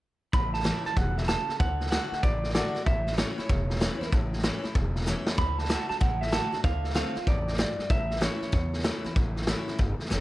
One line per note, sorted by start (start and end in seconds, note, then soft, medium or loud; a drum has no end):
0.33 0.70 A1 medium
0.33 0.94 A2 medium
0.33 0.53 B5 loud
0.33 kick loud
0.33 snare soft
0.54 0.85 A5 loud
0.54 snare soft
0.60 snare soft
0.64 0.84 E3 medium
0.64 0.85 A3 medium
0.64 0.85 C#4 loud
0.64 0.84 E4 loud
0.64 snare loud
0.64 hi-hat pedal medium
0.85 0.97 C#4 soft
0.85 0.96 E4 medium
0.85 0.97 A5 loud
0.85 muted upright bass stroke medium
0.85 snare soft
0.97 1.33 E1 medium
0.97 1.27 B2 medium
0.97 1.17 F#5 medium
0.97 kick loud
0.97 snare soft
1.17 1.28 E5 medium
1.17 snare soft
1.23 snare soft
1.28 1.59 C#3 medium
1.28 1.59 A5 loud
1.28 snare loud
1.28 hi-hat pedal medium
1.48 muted upright bass stroke medium
1.48 snare soft
1.60 1.96 D2 medium
1.60 1.90 D3 medium
1.60 1.90 F#5 loud
1.60 kick loud
1.60 snare soft
1.80 snare soft
1.86 snare soft
1.91 2.22 D3 medium
1.91 2.22 A3 medium
1.91 2.22 D4 medium
1.91 2.23 F#4 loud
1.91 2.24 F#5 medium
1.91 snare loud
1.91 hi-hat pedal medium
2.12 muted upright bass stroke medium
2.12 snare soft
2.23 2.59 A1 medium
2.23 2.84 A2 medium
2.23 2.54 D5 medium
2.23 kick loud
2.23 snare soft
2.44 snare soft
2.49 snare soft
2.55 2.74 D3 medium
2.55 2.74 A3 medium
2.55 2.74 D4 medium
2.55 2.73 F#4 loud
2.55 2.86 D5 medium
2.55 snare loud
2.55 hi-hat pedal medium
2.75 2.86 D4 soft
2.75 2.86 F#4 medium
2.75 muted upright bass stroke medium
2.75 snare soft
2.86 3.22 A1 medium
2.86 3.47 A2 medium
2.86 3.17 E5 medium
2.86 kick loud
2.86 snare soft
3.07 snare soft
3.12 snare soft
3.17 3.37 E3 medium
3.17 3.37 A3 medium
3.17 3.37 C#4 loud
3.17 3.37 E4 medium
3.17 4.08 C#5 medium
3.17 snare loud
3.17 hi-hat pedal medium
3.38 3.50 C#4 soft
3.38 3.49 E4 medium
3.38 muted upright bass stroke medium
3.38 snare soft
3.49 3.86 E1 medium
3.49 4.10 E2 medium
3.49 kick loud
3.49 snare soft
3.70 snare soft
3.76 snare soft
3.80 4.00 E3 medium
3.80 4.00 A3 medium
3.80 4.01 C#4 medium
3.80 4.00 E4 medium
3.80 snare loud
3.80 hi-hat pedal medium
4.00 4.13 C#4 medium
4.00 4.12 E4 medium
4.00 muted upright bass stroke medium
4.00 snare soft
4.12 4.49 A1 medium
4.12 4.73 A2 medium
4.12 kick loud
4.12 snare soft
4.33 snare soft
4.39 snare soft
4.43 4.63 E3 medium
4.43 4.63 A3 medium
4.43 4.64 C#4 medium
4.43 4.62 E4 loud
4.43 snare loud
4.43 hi-hat pedal medium
4.64 4.75 C#4 soft
4.64 4.75 E4 medium
4.64 muted upright bass stroke medium
4.64 snare soft
4.75 5.11 E1 medium
4.75 5.36 E2 medium
4.75 kick loud
4.75 snare soft
4.95 snare soft
5.01 snare soft
5.06 5.26 E3 medium
5.06 5.26 A3 medium
5.06 5.26 C#4 medium
5.06 5.25 E4 medium
5.06 snare medium
5.06 hi-hat pedal medium
5.26 5.38 C#4 soft
5.26 5.38 E4 medium
5.26 muted upright bass stroke medium
5.26 snare loud
5.38 5.74 D2 medium
5.38 5.67 D3 medium
5.38 5.58 B5 loud
5.38 kick loud
5.38 snare soft
5.58 5.88 A5 loud
5.58 snare soft
5.65 5.88 D3 medium
5.65 snare soft
5.69 5.89 A3 medium
5.69 5.89 D4 medium
5.69 5.88 F#4 loud
5.69 snare loud
5.69 hi-hat pedal medium
5.89 6.01 D4 medium
5.89 6.00 F#4 medium
5.89 6.00 A5 loud
5.89 muted upright bass stroke medium
5.89 snare soft
6.01 6.37 A1 medium
6.01 6.62 A2 medium
6.01 6.22 F#5 loud
6.01 kick loud
6.01 snare soft
6.21 6.33 E5 medium
6.21 snare soft
6.27 snare soft
6.32 6.52 D3 medium
6.32 6.52 A3 medium
6.32 6.52 D4 medium
6.32 6.51 F#4 medium
6.32 6.62 A5 loud
6.32 snare loud
6.32 hi-hat pedal medium
6.52 6.64 D4 medium
6.52 6.64 F#4 medium
6.52 muted upright bass stroke medium
6.52 snare soft
6.64 7.00 D2 medium
6.64 6.93 D3 medium
6.64 6.95 F5 medium
6.64 kick loud
6.64 snare soft
6.84 snare soft
6.90 snare soft
6.95 7.15 D3 medium
6.95 7.15 A3 medium
6.95 7.15 C4 loud
6.95 7.14 F4 medium
6.95 7.28 F5 loud
6.95 snare loud
6.95 hi-hat pedal medium
7.15 7.27 C4 soft
7.15 7.27 F4 medium
7.15 muted upright bass stroke medium
7.15 snare soft
7.27 7.63 A1 medium
7.27 7.58 F2 loud
7.27 7.58 D5 medium
7.27 kick loud
7.27 snare soft
7.47 snare soft
7.53 snare soft
7.58 7.89 G2 medium
7.58 7.91 D5 medium
7.58 snare loud
7.58 hi-hat pedal medium
7.78 muted upright bass stroke medium
7.78 snare soft
7.90 8.26 A1 loud
7.90 8.51 A2 medium
7.90 8.23 E5 loud
7.90 kick loud
7.90 snare soft
8.10 snare soft
8.16 snare soft
8.21 8.41 E3 medium
8.21 8.41 A3 medium
8.21 8.41 C#4 medium
8.21 8.39 E4 medium
8.21 9.12 C#5 medium
8.21 snare loud
8.21 hi-hat pedal medium
8.41 8.53 C#4 soft
8.41 8.52 E4 medium
8.41 muted upright bass stroke medium
8.41 snare soft
8.52 9.14 E2 loud
8.52 8.89 E2 medium
8.52 kick loud
8.52 snare soft
8.73 snare soft
8.79 snare soft
8.84 9.04 E3 medium
8.84 9.04 A3 medium
8.84 9.04 C#4 medium
8.84 9.03 E4 loud
8.84 snare loud
8.84 hi-hat pedal medium
9.04 9.17 C#4 medium
9.04 9.16 E4 medium
9.04 muted upright bass stroke medium
9.04 snare soft
9.16 9.52 A1 medium
9.16 9.77 A2 medium
9.16 kick loud
9.16 snare soft
9.36 snare soft
9.42 snare soft
9.47 9.67 E3 medium
9.47 9.67 A3 medium
9.47 9.68 C#4 medium
9.47 9.67 E4 loud
9.47 snare loud
9.47 hi-hat pedal medium
9.68 9.80 C#4 soft
9.68 9.79 E4 medium
9.68 muted upright bass stroke medium
9.68 snare soft
9.79 9.96 G1 medium
9.79 10.20 E2 medium
9.79 kick loud
9.79 snare soft
10.00 snare soft
10.05 snare soft
10.10 10.20 F#1 medium
10.10 10.20 E3 medium
10.10 10.20 A3 medium
10.10 10.20 C#4 loud
10.10 10.20 E4 loud
10.10 snare medium
10.10 hi-hat pedal medium